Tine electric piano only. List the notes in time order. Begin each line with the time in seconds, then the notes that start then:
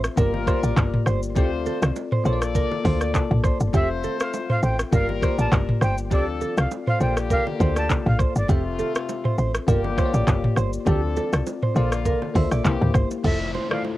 Already playing: C4 F4 A4 E5
0.16 A#3 F4 G4 D5
0.46 A#3 F4 G4 D5
1.35 C4 E4 A4 D5
1.42 F4
2.24 A#3 F4 A4 C#5
2.33 D5
2.83 A#3 F4 A4 D5
3.14 A5
3.44 D5
3.73 C4 F4 G4 E5
3.81 A4
4.91 A#3 F4 G4 D5
5.21 A#3 F4 G4 D5
6.10 C4 F4 A4 D5
6.99 A#3 F4 A4 D5
7.59 A#3 F4 A4 D5
8.48 C4 F4 A4 E5
9.67 A#3 F4 G4 D5
9.96 A#3 F4 G4 C#5
10.05 D5
10.85 C4 F4 A4 D5
11.75 A#3 F4 A4 D5
12.34 A#3 F4 A4 E5
12.64 A#3 E4 G4 C5
13.23 A3 E4 F4 C5
13.69 A3 E4 F4 A4